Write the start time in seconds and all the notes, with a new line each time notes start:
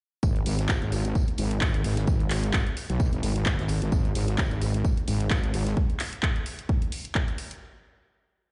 0.23 G#1, kick, tambourine
0.36 closed hi-hat
0.46 G#1, open hi-hat, tambourine
0.58 closed hi-hat
0.69 G#1, kick, snare, clap, tambourine
0.82 G#1, closed hi-hat
0.92 open hi-hat, tambourine
1.05 closed hi-hat
1.15 kick, tambourine
1.28 closed hi-hat
1.38 G#1, open hi-hat, tambourine
1.51 closed hi-hat
1.61 kick, snare, clap, tambourine
1.74 closed hi-hat
1.84 G#1, open hi-hat
1.97 closed hi-hat
2.07 G#1, kick, tambourine
2.20 closed hi-hat
2.30 clap, open hi-hat, tambourine
2.44 closed hi-hat
2.53 G#1, kick, snare, clap, tambourine
2.67 closed hi-hat
2.77 open hi-hat, tambourine
2.90 B1, closed hi-hat
3.00 kick, tambourine
3.13 G#1, closed hi-hat
3.23 G#1, snare, open hi-hat, tambourine
3.36 closed hi-hat
3.46 kick, snare, clap, tambourine
3.59 G#1, snare, closed hi-hat
3.68 open hi-hat, tambourine
3.82 G#1, closed hi-hat
3.92 G#1, kick, tambourine
4.05 closed hi-hat
4.15 G#1, open hi-hat, tambourine
4.28 closed hi-hat
4.38 G#1, kick, snare, clap, tambourine
4.51 G#1, closed hi-hat
4.61 open hi-hat, tambourine
4.74 closed hi-hat
4.85 kick, tambourine
4.97 closed hi-hat
5.08 G#1, open hi-hat, tambourine
5.20 closed hi-hat
5.30 kick, snare, clap, tambourine
5.44 closed hi-hat
5.54 G#1, open hi-hat
5.66 closed hi-hat
5.77 kick
5.90 closed hi-hat
6.00 clap, open hi-hat
6.13 closed hi-hat
6.23 kick, clap
6.36 closed hi-hat
6.46 open hi-hat
6.59 closed hi-hat
6.69 kick
6.82 closed hi-hat
6.92 open hi-hat
7.05 closed hi-hat
7.15 kick, clap
7.28 closed hi-hat
7.38 open hi-hat
7.51 closed hi-hat